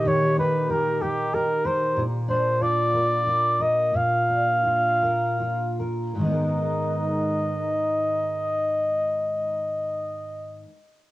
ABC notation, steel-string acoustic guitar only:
X:1
M:6/8
L:1/8
Q:3/8=54
K:G#m
V:1 name="Steel-string acoustic guitar"
[D,D=G] D G A G A | A,, =D ^E A E A | A,, =D ^E A E A | [G,,D,G,B,DA]6- |
[G,,D,G,B,DA]6 |]